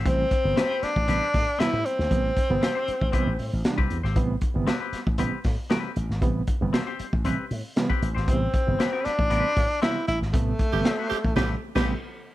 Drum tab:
CC |----------------|----------------|----------------|----------------|
HH |x-x-x-x-x-o-x-x-|x-x-x-x-x-o-x-x-|x-x-x-x-x-o-x-x-|x-x-x-x-x-o-x-x-|
SD |----o-o---o-o--o|----o-------o--o|----o-o---o-o--o|----o-------o--o|
BD |o-o----o--o-----|o-o----oo----o--|o-o----o--o-----|o-o----o-----o--|

CC |----------------|--------x--x----|
HH |x-x-x-x-x-o-x-x-|x-x-x-x---------|
SD |----o-o---o-o--o|----o-o-o--o----|
BD |o-o----o--o-----|o-o----oo--o----|